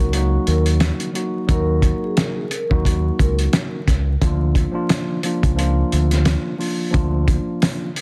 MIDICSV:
0, 0, Header, 1, 5, 480
1, 0, Start_track
1, 0, Key_signature, -6, "minor"
1, 0, Tempo, 681818
1, 1048, Time_signature, 4, 2, 24, 8
1, 5640, End_track
2, 0, Start_track
2, 0, Title_t, "Vibraphone"
2, 0, Program_c, 0, 11
2, 328, Note_on_c, 0, 70, 86
2, 453, Note_off_c, 0, 70, 0
2, 1049, Note_on_c, 0, 70, 107
2, 1405, Note_off_c, 0, 70, 0
2, 1438, Note_on_c, 0, 68, 79
2, 1524, Note_off_c, 0, 68, 0
2, 1528, Note_on_c, 0, 70, 72
2, 1653, Note_off_c, 0, 70, 0
2, 1658, Note_on_c, 0, 68, 83
2, 1752, Note_off_c, 0, 68, 0
2, 1779, Note_on_c, 0, 70, 84
2, 1990, Note_off_c, 0, 70, 0
2, 2245, Note_on_c, 0, 70, 80
2, 2372, Note_off_c, 0, 70, 0
2, 5640, End_track
3, 0, Start_track
3, 0, Title_t, "Tine electric piano"
3, 0, Program_c, 1, 4
3, 0, Note_on_c, 1, 54, 88
3, 0, Note_on_c, 1, 58, 83
3, 0, Note_on_c, 1, 63, 84
3, 0, Note_on_c, 1, 66, 97
3, 71, Note_off_c, 1, 54, 0
3, 74, Note_off_c, 1, 58, 0
3, 77, Note_off_c, 1, 63, 0
3, 81, Note_off_c, 1, 66, 0
3, 88, Note_on_c, 1, 54, 93
3, 95, Note_on_c, 1, 58, 89
3, 101, Note_on_c, 1, 63, 86
3, 108, Note_on_c, 1, 66, 100
3, 759, Note_off_c, 1, 54, 0
3, 763, Note_off_c, 1, 58, 0
3, 766, Note_off_c, 1, 63, 0
3, 769, Note_off_c, 1, 66, 0
3, 795, Note_on_c, 1, 54, 73
3, 802, Note_on_c, 1, 58, 62
3, 809, Note_on_c, 1, 63, 72
3, 816, Note_on_c, 1, 66, 85
3, 1025, Note_off_c, 1, 54, 0
3, 1029, Note_off_c, 1, 58, 0
3, 1032, Note_off_c, 1, 63, 0
3, 1035, Note_off_c, 1, 66, 0
3, 1037, Note_on_c, 1, 54, 94
3, 1044, Note_on_c, 1, 58, 82
3, 1050, Note_on_c, 1, 63, 86
3, 1057, Note_on_c, 1, 66, 98
3, 1714, Note_off_c, 1, 54, 0
3, 1718, Note_off_c, 1, 58, 0
3, 1721, Note_off_c, 1, 63, 0
3, 1724, Note_off_c, 1, 66, 0
3, 1899, Note_on_c, 1, 54, 95
3, 1906, Note_on_c, 1, 58, 84
3, 1911, Note_on_c, 1, 63, 85
3, 1918, Note_on_c, 1, 66, 101
3, 2667, Note_off_c, 1, 54, 0
3, 2671, Note_off_c, 1, 58, 0
3, 2673, Note_off_c, 1, 63, 0
3, 2677, Note_off_c, 1, 66, 0
3, 2966, Note_on_c, 1, 53, 89
3, 2972, Note_on_c, 1, 58, 87
3, 2979, Note_on_c, 1, 62, 91
3, 2985, Note_on_c, 1, 65, 98
3, 3313, Note_off_c, 1, 53, 0
3, 3316, Note_off_c, 1, 58, 0
3, 3319, Note_off_c, 1, 62, 0
3, 3322, Note_off_c, 1, 65, 0
3, 3323, Note_on_c, 1, 53, 93
3, 3330, Note_on_c, 1, 58, 84
3, 3336, Note_on_c, 1, 62, 87
3, 3343, Note_on_c, 1, 65, 111
3, 3651, Note_off_c, 1, 53, 0
3, 3655, Note_off_c, 1, 58, 0
3, 3658, Note_off_c, 1, 62, 0
3, 3661, Note_off_c, 1, 65, 0
3, 3686, Note_on_c, 1, 53, 99
3, 3693, Note_on_c, 1, 58, 83
3, 3699, Note_on_c, 1, 62, 87
3, 3705, Note_on_c, 1, 65, 100
3, 3908, Note_off_c, 1, 53, 0
3, 3914, Note_off_c, 1, 58, 0
3, 3916, Note_on_c, 1, 53, 92
3, 3917, Note_off_c, 1, 62, 0
3, 3920, Note_off_c, 1, 65, 0
3, 3923, Note_on_c, 1, 58, 91
3, 3930, Note_on_c, 1, 62, 80
3, 3936, Note_on_c, 1, 65, 105
3, 4594, Note_off_c, 1, 53, 0
3, 4597, Note_off_c, 1, 58, 0
3, 4600, Note_off_c, 1, 62, 0
3, 4604, Note_off_c, 1, 65, 0
3, 4625, Note_on_c, 1, 53, 72
3, 4631, Note_on_c, 1, 58, 72
3, 4638, Note_on_c, 1, 62, 68
3, 4645, Note_on_c, 1, 65, 88
3, 4852, Note_off_c, 1, 53, 0
3, 4858, Note_off_c, 1, 58, 0
3, 4861, Note_on_c, 1, 53, 88
3, 4865, Note_off_c, 1, 62, 0
3, 4867, Note_on_c, 1, 58, 85
3, 4870, Note_off_c, 1, 65, 0
3, 4873, Note_on_c, 1, 62, 85
3, 4881, Note_on_c, 1, 65, 96
3, 5546, Note_off_c, 1, 53, 0
3, 5549, Note_off_c, 1, 58, 0
3, 5552, Note_off_c, 1, 62, 0
3, 5556, Note_off_c, 1, 65, 0
3, 5640, End_track
4, 0, Start_track
4, 0, Title_t, "Fingered electric bass"
4, 0, Program_c, 2, 33
4, 0, Note_on_c, 2, 37, 80
4, 257, Note_off_c, 2, 37, 0
4, 333, Note_on_c, 2, 39, 92
4, 632, Note_off_c, 2, 39, 0
4, 1050, Note_on_c, 2, 39, 103
4, 1350, Note_off_c, 2, 39, 0
4, 1909, Note_on_c, 2, 39, 90
4, 2178, Note_off_c, 2, 39, 0
4, 2251, Note_on_c, 2, 37, 92
4, 2440, Note_off_c, 2, 37, 0
4, 2731, Note_on_c, 2, 37, 88
4, 2920, Note_off_c, 2, 37, 0
4, 2970, Note_on_c, 2, 38, 103
4, 3270, Note_off_c, 2, 38, 0
4, 3828, Note_on_c, 2, 37, 87
4, 4097, Note_off_c, 2, 37, 0
4, 4172, Note_on_c, 2, 38, 83
4, 4471, Note_off_c, 2, 38, 0
4, 4889, Note_on_c, 2, 38, 100
4, 5189, Note_off_c, 2, 38, 0
4, 5640, End_track
5, 0, Start_track
5, 0, Title_t, "Drums"
5, 93, Note_on_c, 9, 42, 91
5, 164, Note_off_c, 9, 42, 0
5, 331, Note_on_c, 9, 42, 59
5, 401, Note_off_c, 9, 42, 0
5, 463, Note_on_c, 9, 42, 64
5, 534, Note_off_c, 9, 42, 0
5, 565, Note_on_c, 9, 42, 87
5, 567, Note_on_c, 9, 38, 108
5, 635, Note_off_c, 9, 42, 0
5, 637, Note_off_c, 9, 38, 0
5, 704, Note_on_c, 9, 42, 58
5, 774, Note_off_c, 9, 42, 0
5, 811, Note_on_c, 9, 42, 65
5, 882, Note_off_c, 9, 42, 0
5, 1047, Note_on_c, 9, 36, 106
5, 1048, Note_on_c, 9, 42, 79
5, 1117, Note_off_c, 9, 36, 0
5, 1118, Note_off_c, 9, 42, 0
5, 1284, Note_on_c, 9, 36, 94
5, 1286, Note_on_c, 9, 42, 73
5, 1354, Note_off_c, 9, 36, 0
5, 1357, Note_off_c, 9, 42, 0
5, 1526, Note_on_c, 9, 42, 104
5, 1531, Note_on_c, 9, 38, 107
5, 1597, Note_off_c, 9, 42, 0
5, 1601, Note_off_c, 9, 38, 0
5, 1766, Note_on_c, 9, 42, 77
5, 1837, Note_off_c, 9, 42, 0
5, 1906, Note_on_c, 9, 36, 93
5, 1977, Note_off_c, 9, 36, 0
5, 2008, Note_on_c, 9, 36, 86
5, 2015, Note_on_c, 9, 42, 92
5, 2078, Note_off_c, 9, 36, 0
5, 2086, Note_off_c, 9, 42, 0
5, 2249, Note_on_c, 9, 36, 99
5, 2252, Note_on_c, 9, 42, 58
5, 2319, Note_off_c, 9, 36, 0
5, 2323, Note_off_c, 9, 42, 0
5, 2384, Note_on_c, 9, 42, 65
5, 2455, Note_off_c, 9, 42, 0
5, 2485, Note_on_c, 9, 42, 87
5, 2487, Note_on_c, 9, 38, 115
5, 2556, Note_off_c, 9, 42, 0
5, 2558, Note_off_c, 9, 38, 0
5, 2727, Note_on_c, 9, 38, 34
5, 2728, Note_on_c, 9, 36, 84
5, 2731, Note_on_c, 9, 42, 71
5, 2797, Note_off_c, 9, 38, 0
5, 2799, Note_off_c, 9, 36, 0
5, 2801, Note_off_c, 9, 42, 0
5, 2967, Note_on_c, 9, 36, 108
5, 2969, Note_on_c, 9, 42, 78
5, 3038, Note_off_c, 9, 36, 0
5, 3039, Note_off_c, 9, 42, 0
5, 3203, Note_on_c, 9, 36, 100
5, 3207, Note_on_c, 9, 42, 72
5, 3274, Note_off_c, 9, 36, 0
5, 3277, Note_off_c, 9, 42, 0
5, 3445, Note_on_c, 9, 42, 100
5, 3450, Note_on_c, 9, 38, 110
5, 3516, Note_off_c, 9, 42, 0
5, 3520, Note_off_c, 9, 38, 0
5, 3684, Note_on_c, 9, 42, 81
5, 3755, Note_off_c, 9, 42, 0
5, 3825, Note_on_c, 9, 36, 98
5, 3827, Note_on_c, 9, 42, 57
5, 3895, Note_off_c, 9, 36, 0
5, 3898, Note_off_c, 9, 42, 0
5, 3933, Note_on_c, 9, 42, 91
5, 4004, Note_off_c, 9, 42, 0
5, 4170, Note_on_c, 9, 42, 61
5, 4240, Note_off_c, 9, 42, 0
5, 4302, Note_on_c, 9, 42, 63
5, 4306, Note_on_c, 9, 38, 36
5, 4373, Note_off_c, 9, 42, 0
5, 4376, Note_off_c, 9, 38, 0
5, 4402, Note_on_c, 9, 42, 88
5, 4405, Note_on_c, 9, 38, 116
5, 4473, Note_off_c, 9, 42, 0
5, 4475, Note_off_c, 9, 38, 0
5, 4650, Note_on_c, 9, 46, 47
5, 4720, Note_off_c, 9, 46, 0
5, 4886, Note_on_c, 9, 36, 109
5, 4888, Note_on_c, 9, 42, 80
5, 4957, Note_off_c, 9, 36, 0
5, 4958, Note_off_c, 9, 42, 0
5, 5123, Note_on_c, 9, 36, 96
5, 5125, Note_on_c, 9, 42, 74
5, 5193, Note_off_c, 9, 36, 0
5, 5196, Note_off_c, 9, 42, 0
5, 5365, Note_on_c, 9, 42, 103
5, 5369, Note_on_c, 9, 38, 112
5, 5435, Note_off_c, 9, 42, 0
5, 5439, Note_off_c, 9, 38, 0
5, 5606, Note_on_c, 9, 42, 78
5, 5640, Note_off_c, 9, 42, 0
5, 5640, End_track
0, 0, End_of_file